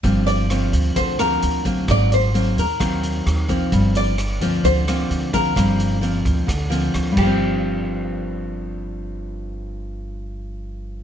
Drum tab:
CC |--------|--------|--------|-------x|
HH |xxxxxxxx|xxxxxxxx|xxxxxxxx|xxxxxxx-|
SD |--r--r--|r---r-r-|--r--r--|r---r-r-|
BD |o---o--o|o---o--o|o---o--o|o--oo--o|

CC |--------|--------|
HH |--------|--------|
SD |--------|--------|
BD |--------|--------|